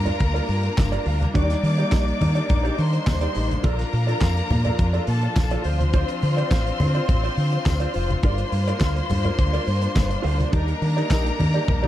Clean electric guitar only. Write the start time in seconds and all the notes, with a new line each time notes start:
0.05 F4 A#4 D5
0.19 muted clean electric guitar stroke
0.34 F4 A#4 D5
0.48 muted clean electric guitar stroke
0.63 muted clean electric guitar stroke
0.77 muted clean electric guitar stroke
0.92 F4 A#4 D5
1.06 F4 A#4 F5
1.21 muted clean electric guitar stroke
1.34 D#4 G4 D5
1.49 muted clean electric guitar stroke
1.63 muted clean electric guitar stroke
1.78 D#4 G4 D5
1.91 D#4 G4 D#5
2.07 muted clean electric guitar stroke
2.21 muted clean electric guitar stroke
2.35 D#4 G4 D5
2.49 muted clean electric guitar stroke
2.63 D#4 G4 D5
2.78 muted clean electric guitar stroke
2.93 muted clean electric guitar stroke
3.06 muted clean electric guitar stroke
3.21 D#4 G4 D5
3.35 D#4 G4 D#5
3.50 muted clean electric guitar stroke
3.63 F4 A4 D5
3.79 muted clean electric guitar stroke
3.92 muted clean electric guitar stroke
4.07 F4 A4 D5
4.21 F4 A4 F5
4.37 muted clean electric guitar stroke
4.50 muted clean electric guitar stroke
4.65 F4 A4 D5
4.79 muted clean electric guitar stroke
4.93 F4 A4 D5
5.07 muted clean electric guitar stroke
5.23 muted clean electric guitar stroke
5.37 muted clean electric guitar stroke
5.51 F4 A4 D5
5.64 F4 C5 F5
5.80 muted clean electric guitar stroke
5.93 F4 C5 D5
6.08 muted clean electric guitar stroke
6.22 muted clean electric guitar stroke
6.37 F4 C5 D5
6.50 F4 C5 F5
6.66 muted clean electric guitar stroke
6.80 muted clean electric guitar stroke
6.95 F4 C5 D5
7.10 muted clean electric guitar stroke
7.24 F4 C5 D5
7.37 muted clean electric guitar stroke
7.53 muted clean electric guitar stroke
7.66 muted clean electric guitar stroke
7.80 F4 C5 D5
7.94 F4 C5 F5
8.11 muted clean electric guitar stroke
8.24 F4 A#4 D5
8.39 muted clean electric guitar stroke
8.52 muted clean electric guitar stroke
8.68 F4 A#4 D5
8.81 F4 A#4 F5
8.96 muted clean electric guitar stroke
9.10 muted clean electric guitar stroke
9.25 F4 A#4 D5
9.37 muted clean electric guitar stroke
9.53 F4 A#4 D5
9.67 muted clean electric guitar stroke
9.82 muted clean electric guitar stroke
9.95 muted clean electric guitar stroke
10.10 muted clean electric guitar stroke
10.22 F4 A#4 F5
10.38 F4 A#4 D5
10.52 D#4 G4 D5
10.67 muted clean electric guitar stroke
10.81 muted clean electric guitar stroke
10.97 D#4 G4 D5
11.10 D#4 G4 D#5
11.26 muted clean electric guitar stroke
11.39 muted clean electric guitar stroke
11.54 D#4 G4 D5
11.68 muted clean electric guitar stroke
11.83 D#4 G4 D5